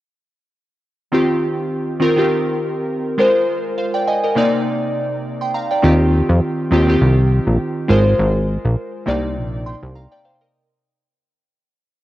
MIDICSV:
0, 0, Header, 1, 3, 480
1, 0, Start_track
1, 0, Key_signature, -3, "major"
1, 0, Tempo, 588235
1, 923, Time_signature, 4, 2, 24, 8
1, 9822, End_track
2, 0, Start_track
2, 0, Title_t, "Synth keys"
2, 0, Program_c, 0, 88
2, 911, Note_on_c, 0, 51, 80
2, 918, Note_on_c, 0, 60, 79
2, 925, Note_on_c, 0, 65, 72
2, 931, Note_on_c, 0, 67, 92
2, 1057, Control_c, 0, 64, 127
2, 1554, Note_off_c, 0, 51, 0
2, 1557, Note_off_c, 0, 60, 0
2, 1561, Note_off_c, 0, 65, 0
2, 1564, Note_off_c, 0, 67, 0
2, 1630, Note_on_c, 0, 51, 84
2, 1636, Note_on_c, 0, 60, 79
2, 1644, Note_on_c, 0, 65, 78
2, 1650, Note_on_c, 0, 70, 97
2, 1751, Note_off_c, 0, 51, 0
2, 1755, Note_off_c, 0, 60, 0
2, 1759, Note_off_c, 0, 65, 0
2, 1761, Note_off_c, 0, 70, 0
2, 1763, Note_on_c, 0, 51, 81
2, 1771, Note_on_c, 0, 60, 76
2, 1777, Note_on_c, 0, 65, 73
2, 1784, Note_on_c, 0, 67, 91
2, 2589, Note_off_c, 0, 65, 0
2, 2593, Note_on_c, 0, 56, 84
2, 2595, Note_off_c, 0, 51, 0
2, 2599, Note_off_c, 0, 60, 0
2, 2599, Note_on_c, 0, 65, 76
2, 2605, Note_off_c, 0, 67, 0
2, 2606, Note_on_c, 0, 70, 77
2, 2613, Note_on_c, 0, 72, 89
2, 2614, Control_c, 0, 64, 0
2, 2772, Control_c, 0, 64, 127
2, 3077, Note_off_c, 0, 72, 0
2, 3082, Note_on_c, 0, 77, 62
2, 3085, Note_off_c, 0, 70, 0
2, 3087, Note_on_c, 0, 72, 54
2, 3208, Note_off_c, 0, 77, 0
2, 3210, Note_off_c, 0, 72, 0
2, 3215, Note_on_c, 0, 79, 70
2, 3220, Note_on_c, 0, 74, 57
2, 3318, Note_off_c, 0, 79, 0
2, 3320, Note_off_c, 0, 74, 0
2, 3325, Note_on_c, 0, 80, 71
2, 3329, Note_on_c, 0, 75, 61
2, 3446, Note_off_c, 0, 75, 0
2, 3447, Note_off_c, 0, 56, 0
2, 3450, Note_off_c, 0, 65, 0
2, 3450, Note_off_c, 0, 80, 0
2, 3456, Note_on_c, 0, 75, 64
2, 3461, Note_on_c, 0, 70, 52
2, 3553, Note_on_c, 0, 48, 88
2, 3560, Note_on_c, 0, 58, 81
2, 3566, Note_on_c, 0, 63, 82
2, 3572, Note_on_c, 0, 74, 97
2, 3574, Control_c, 0, 64, 0
2, 3684, Note_off_c, 0, 75, 0
2, 3686, Note_off_c, 0, 70, 0
2, 3721, Control_c, 0, 64, 127
2, 4288, Note_off_c, 0, 74, 0
2, 4407, Note_off_c, 0, 48, 0
2, 4410, Note_off_c, 0, 58, 0
2, 4414, Note_off_c, 0, 63, 0
2, 4416, Note_on_c, 0, 84, 65
2, 4421, Note_on_c, 0, 79, 55
2, 4518, Note_off_c, 0, 84, 0
2, 4521, Note_off_c, 0, 79, 0
2, 4523, Note_on_c, 0, 82, 68
2, 4528, Note_on_c, 0, 77, 60
2, 4649, Note_off_c, 0, 82, 0
2, 4651, Note_off_c, 0, 77, 0
2, 4657, Note_on_c, 0, 79, 64
2, 4663, Note_on_c, 0, 74, 55
2, 4753, Note_on_c, 0, 51, 83
2, 4758, Note_on_c, 0, 60, 77
2, 4765, Note_on_c, 0, 65, 75
2, 4772, Note_on_c, 0, 67, 88
2, 4774, Control_c, 0, 64, 0
2, 4884, Note_off_c, 0, 79, 0
2, 4887, Note_off_c, 0, 74, 0
2, 4926, Control_c, 0, 64, 127
2, 5395, Note_off_c, 0, 51, 0
2, 5398, Note_off_c, 0, 60, 0
2, 5401, Note_off_c, 0, 65, 0
2, 5405, Note_off_c, 0, 67, 0
2, 5473, Note_on_c, 0, 51, 83
2, 5480, Note_on_c, 0, 60, 80
2, 5487, Note_on_c, 0, 65, 80
2, 5494, Note_on_c, 0, 67, 92
2, 5593, Note_off_c, 0, 51, 0
2, 5597, Note_off_c, 0, 60, 0
2, 5600, Note_off_c, 0, 65, 0
2, 5604, Note_off_c, 0, 67, 0
2, 5605, Note_on_c, 0, 51, 80
2, 5612, Note_on_c, 0, 60, 73
2, 5620, Note_on_c, 0, 65, 75
2, 5627, Note_on_c, 0, 67, 92
2, 6429, Note_off_c, 0, 65, 0
2, 6432, Note_on_c, 0, 56, 80
2, 6436, Note_off_c, 0, 51, 0
2, 6438, Note_on_c, 0, 65, 77
2, 6439, Note_off_c, 0, 60, 0
2, 6444, Note_on_c, 0, 70, 73
2, 6447, Note_off_c, 0, 67, 0
2, 6451, Note_on_c, 0, 72, 90
2, 6454, Control_c, 0, 64, 0
2, 6587, Control_c, 0, 64, 127
2, 7287, Note_off_c, 0, 56, 0
2, 7290, Note_off_c, 0, 65, 0
2, 7293, Note_off_c, 0, 70, 0
2, 7296, Note_off_c, 0, 72, 0
2, 7392, Note_on_c, 0, 48, 89
2, 7399, Note_on_c, 0, 58, 85
2, 7406, Note_on_c, 0, 63, 81
2, 7413, Note_on_c, 0, 74, 97
2, 7415, Control_c, 0, 64, 0
2, 7552, Control_c, 0, 64, 127
2, 7883, Note_on_c, 0, 84, 58
2, 7888, Note_off_c, 0, 74, 0
2, 7888, Note_on_c, 0, 79, 49
2, 8111, Note_off_c, 0, 84, 0
2, 8114, Note_off_c, 0, 79, 0
2, 8122, Note_on_c, 0, 82, 69
2, 8126, Note_on_c, 0, 77, 58
2, 8247, Note_off_c, 0, 48, 0
2, 8248, Note_off_c, 0, 82, 0
2, 8250, Note_off_c, 0, 58, 0
2, 8250, Note_off_c, 0, 77, 0
2, 8254, Note_off_c, 0, 63, 0
2, 8254, Note_on_c, 0, 79, 69
2, 8258, Note_on_c, 0, 74, 62
2, 8357, Note_off_c, 0, 79, 0
2, 8359, Note_off_c, 0, 74, 0
2, 8362, Note_on_c, 0, 77, 65
2, 8366, Note_on_c, 0, 72, 55
2, 8488, Note_off_c, 0, 77, 0
2, 8490, Note_off_c, 0, 72, 0
2, 8494, Note_on_c, 0, 75, 58
2, 8498, Note_on_c, 0, 70, 51
2, 8614, Control_c, 0, 64, 0
2, 8723, Note_off_c, 0, 75, 0
2, 8725, Note_off_c, 0, 70, 0
2, 9822, End_track
3, 0, Start_track
3, 0, Title_t, "Analog synth bass"
3, 0, Program_c, 1, 38
3, 4763, Note_on_c, 1, 39, 101
3, 5078, Note_off_c, 1, 39, 0
3, 5135, Note_on_c, 1, 41, 88
3, 5227, Note_off_c, 1, 41, 0
3, 5481, Note_on_c, 1, 39, 97
3, 5685, Note_off_c, 1, 39, 0
3, 5723, Note_on_c, 1, 36, 98
3, 6038, Note_off_c, 1, 36, 0
3, 6095, Note_on_c, 1, 34, 83
3, 6187, Note_off_c, 1, 34, 0
3, 6442, Note_on_c, 1, 32, 104
3, 6646, Note_off_c, 1, 32, 0
3, 6683, Note_on_c, 1, 32, 108
3, 6999, Note_off_c, 1, 32, 0
3, 7056, Note_on_c, 1, 34, 96
3, 7147, Note_off_c, 1, 34, 0
3, 7405, Note_on_c, 1, 36, 91
3, 7644, Note_on_c, 1, 34, 93
3, 7656, Note_off_c, 1, 36, 0
3, 7959, Note_off_c, 1, 34, 0
3, 8017, Note_on_c, 1, 36, 87
3, 8220, Note_off_c, 1, 36, 0
3, 9822, End_track
0, 0, End_of_file